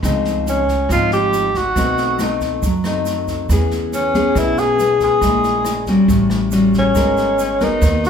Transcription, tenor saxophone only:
0.49 0.88 C#4 medium
0.92 1.11 F4 medium
1.13 1.59 G4 medium
1.57 2.43 F#4 medium
3.94 4.40 C#4 medium
4.38 4.60 E4 medium
4.59 5.02 G#4 loud
5.04 5.85 G#4 medium
6.78 7.65 C#4 medium
7.64 8.05 D#4 medium
8.06 8.10 F#4 medium

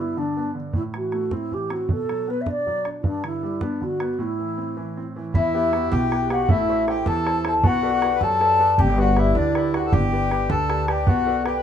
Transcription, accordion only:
5.34 5.93 E4 medium
5.91 6.32 G4 medium
6.31 6.50 F#4 medium
6.50 6.85 E4 medium
6.89 7.07 G4 medium
7.07 7.44 A4 medium
7.46 7.54 A4 medium
7.64 8.16 F#4 loud
8.15 8.21 B4 medium
8.22 8.75 A4 medium
8.78 8.99 G4 medium
8.99 9.18 F#4 medium
9.17 9.36 E4 medium
9.35 9.54 D4 medium
9.55 9.75 E4 medium
9.74 9.86 F#4 medium
9.85 9.92 A4 medium
9.92 10.51 G4 medium
10.50 10.86 A4 medium
10.88 11.07 G4 medium
11.07 11.43 F#4 medium
11.46 11.58 G4 medium
11.57 11.63 B4 medium

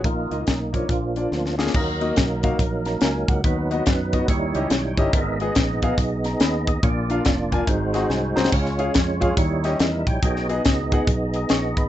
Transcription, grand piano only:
0.04 0.70 A#2 medium
0.31 0.42 A#3 medium
0.31 0.42 D#4 medium
0.31 0.43 F4 medium
0.31 0.43 D#5 medium
0.73 0.84 A#3 medium
0.73 0.84 D#4 medium
0.73 0.85 F4 medium
0.73 0.85 C#5 medium
0.89 1.55 A#2 medium
1.16 1.27 A#3 medium
1.16 1.28 D4 medium
1.16 1.28 F4 medium
1.16 1.28 D5 medium
1.58 1.70 A#3 medium
1.58 1.70 D4 medium
1.58 1.70 F4 medium
1.58 1.70 G#4 medium
1.74 2.40 D#3 medium
2.01 2.12 A#3 medium
2.01 2.12 D#4 medium
2.01 2.12 F#4 medium
2.01 2.12 D#5 medium
2.43 2.55 A#3 medium
2.43 2.55 D#4 medium
2.43 2.55 F#4 medium
2.43 2.55 F5 medium
2.86 3.01 A#5 medium
3.03 3.28 G#5 medium
3.29 3.69 F#5 medium
3.44 4.09 D#3 medium
3.70 3.82 B3 medium
3.70 3.82 D#4 medium
3.70 3.82 F#4 medium
3.70 3.82 D#5 medium
4.13 4.24 B3 medium
4.13 4.24 D#4 medium
4.13 4.24 F#4 medium
4.13 4.24 D#5 loud
4.29 4.94 D#3 medium
4.55 4.66 C#4 medium
4.55 4.66 E4 medium
4.55 4.66 G4 medium
4.55 4.67 D#5 medium
4.97 5.09 C#4 medium
4.97 5.09 E4 medium
4.97 5.09 G4 medium
4.97 5.09 D#5 loud
5.14 5.79 G#2 medium
5.41 5.52 B3 medium
5.41 5.52 D#4 medium
5.41 5.52 G#4 medium
5.41 5.52 D#5 medium
5.83 5.94 B3 medium
5.83 5.94 D#4 medium
5.83 5.94 G#4 medium
5.83 5.94 F5 medium
6.25 6.40 A#5 medium
6.41 6.66 B5 medium
6.68 7.08 D#6 medium
6.83 7.48 A#2 medium
7.10 7.21 D4 medium
7.10 7.21 F4 medium
7.10 7.21 A#4 medium
7.10 7.21 F5 medium
7.52 7.63 D4 medium
7.52 7.63 F4 medium
7.52 7.63 A#4 medium
7.52 7.63 G#5 loud
7.67 8.33 G#2 medium
7.93 8.05 C4 medium
7.93 8.05 F#4 medium
7.93 8.05 G#4 medium
7.93 8.05 D#5 medium
7.93 8.09 F#5 medium
8.09 8.35 G#5 medium
8.36 8.48 C4 medium
8.36 8.48 F#4 medium
8.36 8.48 G#4 medium
8.36 8.48 C5 loud
8.36 8.51 A#5 medium
8.52 9.17 C#3 medium
8.78 8.90 C#4 medium
8.78 8.90 F4 medium
8.78 8.90 G#4 medium
8.78 8.91 F5 medium
9.20 9.32 C#4 medium
9.20 9.32 F4 medium
9.20 9.33 G#4 medium
9.20 9.33 F5 medium
9.37 10.03 D#3 medium
9.64 9.75 C#4 medium
9.64 9.75 E4 medium
9.64 9.76 G4 medium
9.64 9.76 D#5 loud
10.07 10.48 G5 medium
10.24 10.89 B2 medium
10.49 10.60 B3 medium
10.49 10.61 D#4 medium
10.49 10.61 G#4 medium
10.49 10.61 D#5 medium
10.92 11.03 B3 medium
10.92 11.03 D#4 medium
10.92 11.04 G#4 medium
10.92 11.04 F#5 medium
11.36 11.50 D#6 medium
11.50 11.76 C#6 medium
11.78 11.89 B5 medium

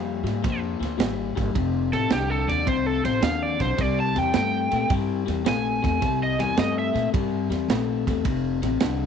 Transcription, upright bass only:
0.00 0.23 F2 medium
0.23 0.42 G#2 medium
0.44 0.80 F2 loud
0.80 0.98 D2 medium
0.99 1.35 G#1 loud
1.37 1.55 G1 loud
1.55 1.91 F1 loud
1.93 2.10 A1 medium
2.11 2.47 C2 medium
2.47 2.66 D#2 medium
2.67 3.03 C2 medium
3.05 3.21 A1 medium
3.22 3.58 D#2 medium
3.60 3.78 B1 medium
3.78 4.14 C2 medium
4.16 4.34 E2 medium
4.35 4.70 G2 medium
4.72 4.89 A#2 medium
4.90 5.26 G2 medium
5.28 5.45 E2 medium
5.46 5.82 A#1 medium
5.84 6.01 E2 loud
6.02 6.38 C2 loud
6.39 6.57 E2 medium
6.58 6.94 G2 medium
6.95 7.13 A#2 medium
7.13 7.49 G2 medium
7.50 7.68 E2 medium
7.69 8.05 A#1 medium
8.07 8.26 E2 medium
8.25 8.61 F1 medium
8.63 8.81 A1 medium
8.82 9.06 C2 medium

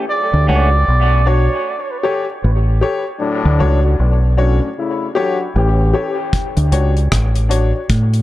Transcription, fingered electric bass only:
0.34 0.48 D2 loud
0.49 0.86 C#2 medium
0.88 1.47 B1 medium
2.44 2.81 A1 medium
3.45 3.60 D2 loud
3.61 3.98 C#2 loud
3.99 4.59 B1 medium
5.56 5.93 A1 loud
6.57 6.71 D2 loud
6.72 7.09 C#2 medium
7.12 7.72 A1 medium
7.90 8.22 A2 medium

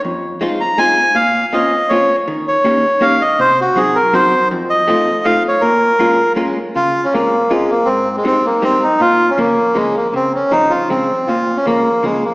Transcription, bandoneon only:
0.61 0.79 A#5 medium
0.78 1.16 G#5 loud
1.15 1.54 F5 loud
1.53 1.91 D#5 medium
1.89 2.16 C#5 medium
2.48 3.04 C#5 medium
3.02 3.23 F5 medium
3.21 3.40 D#5 medium
3.40 3.60 C5 loud
3.61 3.78 F#4 medium
3.77 3.97 G#4 medium
3.95 4.14 A#4 medium
4.14 4.48 C5 medium
4.70 5.26 D#5 medium
5.25 5.43 F5 loud
5.48 5.62 C#5 medium
5.61 6.33 A#4 medium
6.76 7.05 F4 loud
7.05 7.14 C#4 medium
7.13 7.52 A#3 medium
7.50 7.71 G#3 medium
7.70 7.88 A#3 medium
7.85 8.16 C4 medium
8.16 8.25 G#3 medium
8.26 8.46 C4 medium
8.46 8.64 A#3 medium
8.63 8.84 C4 medium
8.83 9.01 D#4 medium
9.01 9.30 F4 loud
9.30 9.38 C#4 medium
9.39 9.77 A#3 medium
9.75 9.96 G#3 medium
9.96 10.14 A#3 medium
10.15 10.33 C4 medium
10.35 10.52 C#4 medium
10.51 10.72 D#4 medium
10.70 10.89 F4 medium
10.89 11.29 C4 medium
11.27 11.57 F4 medium
11.57 11.66 C#4 medium
11.66 12.05 A#3 medium
12.04 12.24 G#3 medium
12.25 12.34 A#3 medium

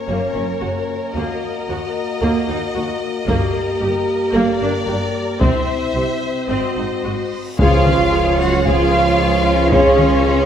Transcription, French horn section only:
0.00 3.24 A#3 soft
0.00 1.12 C#4 soft
1.14 3.23 F#4 soft
3.28 5.37 A#3 medium
3.28 5.38 G4 medium
5.42 7.33 C4 soft
5.42 6.34 E4 soft
6.51 7.31 F#4 soft
7.60 7.78 C#4 medium
7.60 7.78 G#4 medium
8.66 8.84 C#4 medium
8.66 8.84 G#4 medium
9.71 9.90 C#4 medium
9.71 9.90 G#4 medium

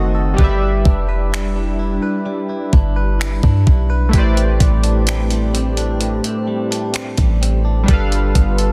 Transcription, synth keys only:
0.00 0.37 D#3 medium
0.00 0.38 C4 medium
0.00 0.39 F#4 medium
0.00 0.39 A4 medium
0.00 0.40 D#5 medium
0.34 4.07 G3 medium
0.34 4.08 G4 medium
0.39 4.10 B4 medium
0.39 4.11 D5 medium
0.44 4.12 E5 medium
4.09 7.82 A3 medium
4.09 7.83 E4 medium
4.13 7.84 G4 medium
4.13 7.85 B4 medium
4.13 7.86 C5 medium
4.19 7.87 D5 medium
7.83 8.72 G3 medium
7.83 8.72 D4 medium
7.88 8.72 A4 medium
7.88 8.72 B4 medium
7.93 8.72 F5 medium

